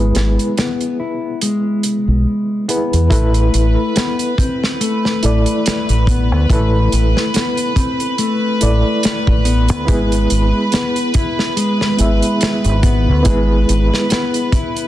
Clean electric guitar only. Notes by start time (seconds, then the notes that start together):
Already playing: G#3
0.58 B3
1.00 E4
1.42 G#3
2.68 B3
3.11 A3
3.96 B3
4.38 C4
4.80 A3
6.08 B3
6.50 A3
7.34 B3
7.76 C4
8.18 A3
9.45 B3
9.88 G#3
10.72 B3
11.14 E4
11.56 G#3
12.82 B3
13.25 G#3
14.10 B3
14.52 E4